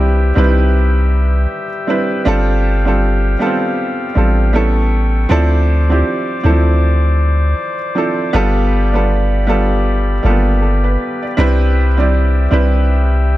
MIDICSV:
0, 0, Header, 1, 4, 480
1, 0, Start_track
1, 0, Tempo, 759494
1, 1431, Time_signature, 4, 2, 24, 8
1, 8452, End_track
2, 0, Start_track
2, 0, Title_t, "Pipe organ"
2, 0, Program_c, 0, 19
2, 0, Note_on_c, 0, 67, 77
2, 0, Note_on_c, 0, 76, 67
2, 0, Note_on_c, 0, 79, 80
2, 1412, Note_off_c, 0, 67, 0
2, 1413, Note_off_c, 0, 76, 0
2, 1432, Note_on_c, 0, 67, 78
2, 1432, Note_on_c, 0, 77, 69
2, 2847, Note_off_c, 0, 79, 0
2, 2858, Note_off_c, 0, 67, 0
2, 2858, Note_off_c, 0, 77, 0
2, 2872, Note_on_c, 0, 85, 73
2, 2873, Note_on_c, 0, 69, 68
2, 2873, Note_on_c, 0, 79, 61
2, 3347, Note_off_c, 0, 79, 0
2, 3347, Note_off_c, 0, 85, 0
2, 3348, Note_off_c, 0, 69, 0
2, 3348, Note_on_c, 0, 86, 80
2, 3349, Note_on_c, 0, 72, 77
2, 3349, Note_on_c, 0, 74, 68
2, 5251, Note_off_c, 0, 72, 0
2, 5251, Note_off_c, 0, 86, 0
2, 5269, Note_on_c, 0, 83, 84
2, 5271, Note_on_c, 0, 67, 71
2, 7165, Note_off_c, 0, 74, 0
2, 7171, Note_off_c, 0, 83, 0
2, 7172, Note_off_c, 0, 67, 0
2, 7190, Note_on_c, 0, 67, 73
2, 7190, Note_on_c, 0, 76, 69
2, 7190, Note_on_c, 0, 79, 84
2, 8452, Note_off_c, 0, 67, 0
2, 8452, Note_off_c, 0, 76, 0
2, 8452, Note_off_c, 0, 79, 0
2, 8452, End_track
3, 0, Start_track
3, 0, Title_t, "Felt piano"
3, 0, Program_c, 1, 0
3, 0, Control_c, 1, 64, 127
3, 0, Note_on_c, 1, 55, 87
3, 0, Note_on_c, 1, 60, 74
3, 0, Note_on_c, 1, 62, 74
3, 0, Note_on_c, 1, 64, 77
3, 0, Note_on_c, 1, 67, 87
3, 0, Note_on_c, 1, 71, 127
3, 178, Note_off_c, 1, 55, 0
3, 180, Note_off_c, 1, 60, 0
3, 182, Note_off_c, 1, 62, 0
3, 184, Note_off_c, 1, 64, 0
3, 187, Note_off_c, 1, 67, 0
3, 222, Note_on_c, 1, 55, 92
3, 227, Note_on_c, 1, 60, 83
3, 231, Note_on_c, 1, 62, 83
3, 236, Note_on_c, 1, 63, 66
3, 240, Note_off_c, 1, 71, 0
3, 240, Note_on_c, 1, 71, 103
3, 277, Note_on_c, 1, 64, 89
3, 281, Note_off_c, 1, 63, 0
3, 1044, Note_off_c, 1, 55, 0
3, 1046, Note_off_c, 1, 60, 0
3, 1048, Note_off_c, 1, 62, 0
3, 1053, Note_off_c, 1, 71, 0
3, 1071, Note_off_c, 1, 64, 0
3, 1182, Note_on_c, 1, 55, 79
3, 1187, Note_on_c, 1, 60, 75
3, 1192, Note_on_c, 1, 62, 74
3, 1195, Note_on_c, 1, 64, 73
3, 1200, Note_on_c, 1, 71, 90
3, 1394, Note_off_c, 1, 55, 0
3, 1396, Note_off_c, 1, 60, 0
3, 1399, Note_off_c, 1, 62, 0
3, 1401, Note_off_c, 1, 64, 0
3, 1403, Note_off_c, 1, 71, 0
3, 1422, Note_on_c, 1, 55, 109
3, 1426, Note_on_c, 1, 60, 103
3, 1430, Note_on_c, 1, 62, 108
3, 1434, Note_on_c, 1, 65, 108
3, 1439, Control_c, 1, 64, 0
3, 1440, Note_on_c, 1, 69, 127
3, 1544, Control_c, 1, 64, 127
3, 1738, Note_off_c, 1, 55, 0
3, 1740, Note_off_c, 1, 60, 0
3, 1742, Note_off_c, 1, 62, 0
3, 1744, Note_off_c, 1, 65, 0
3, 1747, Note_off_c, 1, 69, 0
3, 1801, Note_on_c, 1, 55, 77
3, 1806, Note_on_c, 1, 60, 75
3, 1811, Note_on_c, 1, 62, 72
3, 1814, Note_on_c, 1, 65, 75
3, 1819, Note_on_c, 1, 69, 94
3, 2097, Note_off_c, 1, 55, 0
3, 2100, Note_off_c, 1, 60, 0
3, 2102, Note_off_c, 1, 62, 0
3, 2104, Note_off_c, 1, 65, 0
3, 2107, Note_off_c, 1, 69, 0
3, 2143, Note_on_c, 1, 55, 86
3, 2148, Note_on_c, 1, 59, 66
3, 2151, Note_on_c, 1, 62, 85
3, 2155, Note_on_c, 1, 65, 85
3, 2160, Note_on_c, 1, 69, 103
3, 2188, Note_on_c, 1, 60, 84
3, 2197, Note_off_c, 1, 59, 0
3, 2562, Note_off_c, 1, 55, 0
3, 2566, Note_off_c, 1, 62, 0
3, 2568, Note_off_c, 1, 65, 0
3, 2570, Note_off_c, 1, 69, 0
3, 2584, Note_off_c, 1, 60, 0
3, 2622, Note_on_c, 1, 55, 82
3, 2627, Note_on_c, 1, 60, 72
3, 2631, Note_on_c, 1, 62, 76
3, 2636, Note_on_c, 1, 65, 76
3, 2640, Note_on_c, 1, 69, 91
3, 2853, Note_off_c, 1, 55, 0
3, 2863, Note_on_c, 1, 55, 89
3, 2867, Note_on_c, 1, 59, 83
3, 2869, Note_off_c, 1, 60, 0
3, 2870, Note_off_c, 1, 69, 0
3, 2871, Note_off_c, 1, 62, 0
3, 2872, Note_on_c, 1, 61, 86
3, 2874, Note_off_c, 1, 65, 0
3, 2875, Note_on_c, 1, 64, 81
3, 2880, Note_on_c, 1, 69, 100
3, 2881, Control_c, 1, 64, 0
3, 3005, Control_c, 1, 64, 127
3, 3281, Note_off_c, 1, 55, 0
3, 3283, Note_off_c, 1, 59, 0
3, 3286, Note_off_c, 1, 61, 0
3, 3288, Note_off_c, 1, 64, 0
3, 3290, Note_off_c, 1, 69, 0
3, 3342, Note_on_c, 1, 53, 113
3, 3347, Note_on_c, 1, 60, 104
3, 3352, Note_on_c, 1, 62, 106
3, 3355, Note_on_c, 1, 64, 106
3, 3360, Control_c, 1, 64, 0
3, 3360, Note_on_c, 1, 69, 127
3, 3476, Control_c, 1, 64, 127
3, 3658, Note_off_c, 1, 53, 0
3, 3660, Note_off_c, 1, 60, 0
3, 3663, Note_off_c, 1, 62, 0
3, 3665, Note_off_c, 1, 64, 0
3, 3667, Note_off_c, 1, 69, 0
3, 3724, Note_on_c, 1, 53, 80
3, 3729, Note_on_c, 1, 60, 79
3, 3731, Note_on_c, 1, 62, 71
3, 3737, Note_on_c, 1, 64, 73
3, 3741, Note_on_c, 1, 67, 92
3, 4019, Note_off_c, 1, 53, 0
3, 4021, Note_off_c, 1, 60, 0
3, 4023, Note_off_c, 1, 62, 0
3, 4025, Note_off_c, 1, 64, 0
3, 4027, Note_off_c, 1, 67, 0
3, 4063, Note_on_c, 1, 52, 73
3, 4067, Note_on_c, 1, 60, 83
3, 4071, Note_on_c, 1, 62, 86
3, 4076, Note_on_c, 1, 64, 85
3, 4080, Note_on_c, 1, 69, 95
3, 4104, Note_on_c, 1, 53, 91
3, 4115, Note_off_c, 1, 52, 0
3, 4886, Note_off_c, 1, 60, 0
3, 4888, Note_off_c, 1, 62, 0
3, 4891, Note_off_c, 1, 64, 0
3, 4893, Note_off_c, 1, 69, 0
3, 4905, Note_off_c, 1, 53, 0
3, 5024, Note_on_c, 1, 53, 83
3, 5028, Note_on_c, 1, 60, 74
3, 5034, Note_on_c, 1, 62, 72
3, 5037, Note_on_c, 1, 64, 71
3, 5042, Note_on_c, 1, 69, 92
3, 5235, Note_off_c, 1, 53, 0
3, 5237, Note_off_c, 1, 60, 0
3, 5240, Note_off_c, 1, 62, 0
3, 5242, Note_off_c, 1, 64, 0
3, 5244, Note_off_c, 1, 69, 0
3, 5265, Note_on_c, 1, 55, 119
3, 5268, Note_on_c, 1, 59, 109
3, 5273, Note_on_c, 1, 62, 109
3, 5277, Note_on_c, 1, 65, 110
3, 5279, Control_c, 1, 64, 0
3, 5281, Note_on_c, 1, 69, 127
3, 5387, Control_c, 1, 64, 127
3, 5579, Note_off_c, 1, 55, 0
3, 5581, Note_off_c, 1, 59, 0
3, 5583, Note_off_c, 1, 62, 0
3, 5586, Note_off_c, 1, 65, 0
3, 5587, Note_off_c, 1, 69, 0
3, 5642, Note_on_c, 1, 55, 83
3, 5647, Note_on_c, 1, 59, 80
3, 5651, Note_on_c, 1, 62, 75
3, 5655, Note_on_c, 1, 65, 75
3, 5659, Note_on_c, 1, 69, 94
3, 5938, Note_off_c, 1, 55, 0
3, 5940, Note_off_c, 1, 59, 0
3, 5942, Note_off_c, 1, 62, 0
3, 5944, Note_off_c, 1, 65, 0
3, 5947, Note_off_c, 1, 69, 0
3, 5983, Note_on_c, 1, 55, 88
3, 5988, Note_on_c, 1, 59, 80
3, 5992, Note_on_c, 1, 62, 87
3, 5996, Note_on_c, 1, 65, 84
3, 6000, Note_on_c, 1, 69, 102
3, 6402, Note_off_c, 1, 55, 0
3, 6404, Note_off_c, 1, 59, 0
3, 6406, Note_off_c, 1, 62, 0
3, 6408, Note_off_c, 1, 65, 0
3, 6410, Note_off_c, 1, 69, 0
3, 6464, Note_on_c, 1, 55, 85
3, 6468, Note_on_c, 1, 58, 59
3, 6473, Note_on_c, 1, 62, 76
3, 6477, Note_on_c, 1, 65, 75
3, 6481, Note_on_c, 1, 69, 92
3, 6509, Note_on_c, 1, 59, 75
3, 6518, Note_off_c, 1, 58, 0
3, 6702, Note_off_c, 1, 69, 0
3, 6712, Note_on_c, 1, 69, 69
3, 6844, Note_off_c, 1, 69, 0
3, 6851, Note_on_c, 1, 71, 72
3, 7079, Note_off_c, 1, 71, 0
3, 7089, Note_off_c, 1, 55, 0
3, 7094, Note_off_c, 1, 62, 0
3, 7094, Note_on_c, 1, 74, 63
3, 7096, Note_off_c, 1, 65, 0
3, 7112, Note_off_c, 1, 59, 0
3, 7186, Note_on_c, 1, 55, 114
3, 7191, Note_on_c, 1, 60, 104
3, 7194, Note_on_c, 1, 62, 109
3, 7198, Note_on_c, 1, 64, 108
3, 7200, Control_c, 1, 64, 0
3, 7203, Note_on_c, 1, 71, 127
3, 7318, Control_c, 1, 64, 127
3, 7321, Note_off_c, 1, 74, 0
3, 7500, Note_off_c, 1, 55, 0
3, 7502, Note_off_c, 1, 60, 0
3, 7504, Note_off_c, 1, 62, 0
3, 7506, Note_off_c, 1, 64, 0
3, 7509, Note_off_c, 1, 71, 0
3, 7565, Note_on_c, 1, 55, 83
3, 7570, Note_on_c, 1, 60, 76
3, 7574, Note_on_c, 1, 62, 77
3, 7578, Note_on_c, 1, 64, 80
3, 7583, Note_on_c, 1, 74, 91
3, 7860, Note_off_c, 1, 55, 0
3, 7862, Note_off_c, 1, 60, 0
3, 7864, Note_off_c, 1, 62, 0
3, 7866, Note_off_c, 1, 64, 0
3, 7868, Note_off_c, 1, 74, 0
3, 7904, Note_on_c, 1, 55, 92
3, 7909, Note_on_c, 1, 60, 89
3, 7913, Note_on_c, 1, 62, 85
3, 7918, Note_on_c, 1, 64, 86
3, 7922, Note_on_c, 1, 71, 102
3, 8452, Note_off_c, 1, 55, 0
3, 8452, Note_off_c, 1, 60, 0
3, 8452, Note_off_c, 1, 62, 0
3, 8452, Note_off_c, 1, 64, 0
3, 8452, Note_off_c, 1, 71, 0
3, 8452, End_track
4, 0, Start_track
4, 0, Title_t, "808-style bass"
4, 0, Program_c, 2, 38
4, 0, Note_on_c, 2, 36, 105
4, 208, Note_off_c, 2, 36, 0
4, 234, Note_on_c, 2, 36, 101
4, 928, Note_off_c, 2, 36, 0
4, 1434, Note_on_c, 2, 31, 108
4, 2128, Note_off_c, 2, 31, 0
4, 2635, Note_on_c, 2, 33, 103
4, 3328, Note_off_c, 2, 33, 0
4, 3355, Note_on_c, 2, 38, 102
4, 3814, Note_off_c, 2, 38, 0
4, 4076, Note_on_c, 2, 38, 95
4, 4768, Note_off_c, 2, 38, 0
4, 5275, Note_on_c, 2, 31, 104
4, 6448, Note_off_c, 2, 31, 0
4, 6476, Note_on_c, 2, 31, 104
4, 6935, Note_off_c, 2, 31, 0
4, 7197, Note_on_c, 2, 36, 103
4, 7889, Note_off_c, 2, 36, 0
4, 7914, Note_on_c, 2, 36, 99
4, 8452, Note_off_c, 2, 36, 0
4, 8452, End_track
0, 0, End_of_file